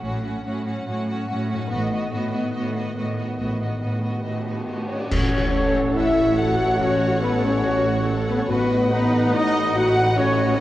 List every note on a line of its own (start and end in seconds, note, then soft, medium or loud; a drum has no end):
0.00 0.39 A1 soft
0.00 1.52 A2 soft
0.00 0.41 A2 soft
0.00 1.69 F#3 soft
0.00 1.67 C#4 soft
0.00 1.69 C#4 soft
0.00 0.22 C#4 soft
0.00 1.61 F#4 soft
0.00 0.21 F#4 soft
0.00 1.71 C#5 soft
0.04 0.24 F#5 soft
0.22 0.45 C#4 soft
0.22 0.44 F#4 soft
0.22 0.45 F#5 soft
0.45 0.82 A2 soft
0.45 0.66 C#4 soft
0.45 0.65 F#4 soft
0.45 0.66 F#5 soft
0.66 0.87 C#4 soft
0.66 0.86 F#4 soft
0.66 0.87 F#5 soft
0.87 1.24 A2 medium
0.87 1.09 C#4 soft
0.87 1.05 F#4 soft
0.87 1.08 F#5 soft
1.07 1.26 F#4 soft
1.07 1.30 F#5 soft
1.11 1.29 C#4 soft
1.28 1.67 A2 medium
1.28 1.51 C#4 soft
1.28 1.48 F#4 medium
1.28 1.50 F#5 medium
1.50 1.72 C#4 medium
1.50 1.67 F#4 soft
1.50 1.71 F#5 medium
1.54 5.05 A2 medium
1.58 5.07 D#4 soft
1.62 5.09 F#4 soft
1.67 1.90 F#4 medium
1.67 5.12 B4 soft
1.71 2.07 A1 medium
1.71 2.09 A2 medium
1.71 4.87 D#3 medium
1.71 4.87 B3 medium
1.71 1.93 B3 medium
1.71 1.92 D#5 medium
1.92 2.13 B3 medium
1.92 2.10 F#4 soft
1.92 2.12 D#5 soft
2.11 2.50 A2 medium
2.11 2.34 B3 medium
2.11 2.29 F#4 medium
2.11 2.33 D#5 medium
2.30 2.52 F#4 soft
2.34 2.55 B3 medium
2.34 2.52 D#5 soft
2.53 2.92 A2 medium
2.53 2.74 F#4 medium
2.53 2.75 D#5 medium
2.58 2.77 B3 medium
2.75 2.97 B3 soft
2.75 2.96 F#4 soft
2.75 2.96 D#5 soft
2.97 3.35 A2 medium
2.97 3.17 B3 soft
2.97 3.15 F#4 soft
2.97 3.17 D#5 soft
3.17 3.39 B3 soft
3.17 3.36 F#4 soft
3.17 3.37 D#5 soft
3.37 3.76 A1 soft
3.37 3.78 A2 soft
3.37 3.60 F#4 soft
3.37 3.60 D#5 soft
3.41 3.61 B3 soft
3.61 3.82 B3 soft
3.61 3.81 F#4 soft
3.61 3.80 D#5 soft
3.81 4.21 A2 soft
3.81 4.02 B3 soft
3.81 4.03 F#4 soft
3.81 4.01 D#5 soft
4.03 4.22 B3 soft
4.03 4.23 F#4 soft
4.03 4.23 D#5 soft
4.24 4.64 A2 soft
4.24 4.45 B3 soft
4.24 4.45 F#4 soft
4.24 4.45 D#5 soft
4.46 4.68 B3 soft
4.46 4.68 F#4 soft
4.46 4.65 D#5 soft
4.67 5.07 A2 soft
4.67 4.87 B3 soft
4.67 4.89 F#4 soft
4.67 4.86 D#5 soft
4.87 5.10 B3 soft
4.87 5.00 C#4 medium
4.87 5.11 F#4 soft
4.87 4.93 C#5 soft
4.87 5.00 C#5 soft
4.87 5.02 C#5 soft
4.87 5.10 D#5 soft
4.97 5.12 D4 soft
4.97 5.09 D5 medium
4.97 5.11 D5 soft
4.97 5.14 D5 medium
5.08 8.44 A2 medium
5.08 5.93 A2 medium
5.08 5.50 C#4 medium
5.08 5.49 F#4 medium
5.08 5.51 C#5 medium
5.08 5.53 C#5 medium
5.08 8.44 C#5 medium
5.12 8.45 A1 medium
5.12 5.53 C#5 loud
5.12 8.45 F#5 medium
5.12 concert bass drum medium
5.12 crash medium
5.22 6.04 C#4 medium
5.32 6.14 A4 medium
5.51 5.94 C#4 loud
5.51 6.35 A4 medium
5.51 5.95 C#5 medium
5.51 5.95 C#5 loud
5.51 5.73 F#5 medium
5.63 6.47 A5 medium
5.74 6.35 F#5 medium
5.83 6.26 C#5 medium
5.93 6.78 A2 medium
5.93 6.37 E4 loud
5.93 6.40 E5 medium
5.93 6.37 E5 medium
5.93 6.39 E5 loud
6.05 6.89 C#4 medium
6.15 6.99 A4 medium
6.27 6.67 C#5 medium
6.35 6.79 F#4 medium
6.35 6.79 A4 medium
6.35 6.57 F#5 medium
6.35 6.80 F#5 medium
6.35 6.81 F#5 medium
6.35 6.80 F#5 medium
6.48 7.31 A5 medium
6.58 7.21 F#5 medium
6.68 7.10 C#5 medium
6.77 7.63 A2 medium
6.77 7.07 C#4 loud
6.77 7.22 F#4 medium
6.77 7.22 C#5 loud
6.77 7.23 C#5 medium
6.77 7.22 C#5 medium
6.90 7.74 C#4 medium
7.00 7.85 A4 medium
7.11 7.52 C#5 medium
7.20 7.42 B3 loud
7.20 7.64 A4 medium
7.20 7.28 B4 medium
7.20 7.43 B4 medium
7.20 7.32 B4 medium
7.20 7.42 F#5 medium
7.32 8.16 A5 medium
7.43 8.06 C#4 loud
7.43 8.05 C#5 medium
7.43 8.06 C#5 medium
7.43 8.05 F#5 medium
7.53 7.95 C#5 medium
7.63 8.47 A2 medium
7.63 8.06 F#4 medium
7.75 8.51 C#4 medium
7.86 8.51 A4 medium
7.97 8.37 C#5 medium
8.05 8.48 A4 medium
8.05 8.26 F#5 medium
8.17 8.50 A5 medium
8.28 8.38 B3 loud
8.28 8.33 B4 medium
8.28 8.41 B4 medium
8.28 8.34 B4 medium
8.28 8.90 F#5 medium
8.38 8.49 C#4 medium
8.38 8.50 C#5 medium
8.38 8.49 C#5 medium
8.38 8.48 C#5 medium
8.38 8.44 C#5 medium
8.47 10.60 A1 medium
8.47 9.34 A2 medium
8.47 10.60 A2 medium
8.47 8.91 B3 loud
8.47 8.89 F#4 medium
8.47 8.90 B4 loud
8.47 8.90 B4 medium
8.47 8.91 B4 medium
8.47 10.60 F#5 medium
8.51 10.60 D#5 medium
8.60 9.44 D#4 medium
8.71 9.53 B4 medium
8.81 9.23 D#5 medium
8.91 9.33 B3 loud
8.91 10.15 D#4 medium
8.91 9.32 B4 loud
8.91 9.33 B4 loud
8.91 9.35 B4 loud
8.91 9.11 F#5 medium
9.02 9.85 B5 medium
9.12 9.74 F#5 medium
9.24 9.64 D#5 medium
9.33 10.16 A2 medium
9.33 9.75 D#4 loud
9.33 9.75 D#5 loud
9.33 9.76 D#5 loud
9.45 10.26 D#4 medium
9.55 10.38 B4 medium
9.65 10.05 D#5 medium
9.75 10.16 F#4 loud
9.75 9.95 F#5 medium
9.75 10.16 F#5 loud
9.75 10.17 F#5 loud
9.86 10.60 B5 medium
9.96 10.58 F#5 medium
10.06 10.47 D#5 medium
10.16 10.60 A2 medium
10.16 10.60 C#4 loud
10.16 10.58 F#4 medium
10.16 10.59 C#5 loud
10.27 10.60 D#4 medium
10.39 10.60 B4 medium
10.48 10.60 D#5 medium